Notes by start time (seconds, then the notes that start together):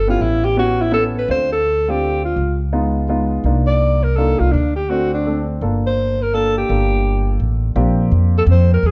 Already playing: G1
0.07 B3 C#4 E4 F4 G4
0.20 A1 E4
0.45 G4
0.57 B3 C#4 E4 F#4 G4
0.82 E4
0.91 B3 C#4 E4 A4
1.19 B4
1.28 D2 A3 C4 D4 F4 C5
1.53 A4
1.88 A3 C4 D4 F4 G4
2.25 F4
2.36 C#2
2.73 G#3 B3 D#4 F4
3.09 G#3 B3 D#4 F4
3.44 C2 A#3 D4 D#4 F4
3.67 D5
4.03 A#4
4.16 A#3 D4 D#4 F4 A4
4.39 C2 F4
4.52 D2 D4
4.76 G4
4.89 A3 C4 D4 F#4
5.14 D4
5.26 A3 C4 D4 A4
5.61 G1 A#3 D4 F4 A4
5.86 C5
6.22 A#4
6.33 A#3 D4 F4 A4
6.58 G4
6.69 G1 A#3 D4 F4 A4
7.40 A1
7.76 A#1 A#3 C4 D4 F4 G4
8.11 F2
8.38 A4
8.46 F2
8.51 C5
8.74 A#4
8.83 E2
8.87 G#4